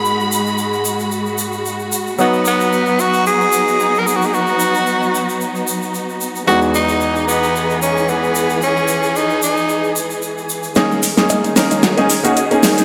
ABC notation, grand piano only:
X:1
M:4/4
L:1/16
Q:"Swing 16ths" 1/4=112
K:Elyd
V:1 name="Grand piano"
[G,,A,B,DF]12- [G,,A,B,DF]2 z2 | [F,B,DF]16- | [F,B,DF]16 | [E,,G,B,DF]16- |
[E,,G,B,DF]16 | [A,CDG]2 z [A,CDG]3 [A,CDA]3 [A,CDG] z [A,CDF] z [A,CDG]3 |]